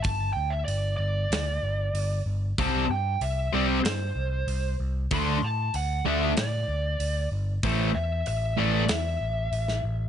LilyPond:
<<
  \new Staff \with { instrumentName = "Lead electric guitar" } { \time 4/4 \key a \minor \tempo 4 = 95 a''8 g''16 e''16 d''8 d''2 r8 | a''8 g''8 e''8 d''8 c''4. r8 | c'''8 a''8 fis''8 e''8 d''4. r8 | c''8 e''8 e''8 d''8 e''4. r8 | }
  \new Staff \with { instrumentName = "Distorted electric guitar" } { \clef bass \time 4/4 \key a \minor r1 | <c g c'>8 r4 <c g c'>8 r2 | <d a d'>8 r4 <d a d'>8 r2 | <a, e a>8 r4 <a, e a>8 r2 | }
  \new Staff \with { instrumentName = "Distorted electric guitar" } { \clef bass \time 4/4 \key a \minor r1 | <c g c'>8 r4 <c g c'>8 r2 | <d a d'>8 r4 <d a d'>8 r2 | <a, e a>8 r4 <a, e a>8 r2 | }
  \new Staff \with { instrumentName = "Picked electric bass" } { \clef bass \time 4/4 \key a \minor g,,8 d,8 g,,8 g,,8 d,8 g,,8 g,,8 g,,8 | c,8 g,8 c,8 c,8 g,8 c,8 c,8 c,8 | d,8 a,8 d,8 d,8 a,8 d,8 d,8 g,,8 | a,,8 e,8 a,,8 a,,8 e,8 a,,8 a,,8 a,,8 | }
  \new DrumStaff \with { instrumentName = "Drums" } \drummode { \time 4/4 <hho bd>4 hho4 <hho sn>4 hho4 | <hho bd>4 hho4 <hho sn>4 hho4 | <hho bd>4 hho4 <hho sn>4 hho4 | <hho bd>4 hho4 <hho sn>4 hho16 sn8. | }
>>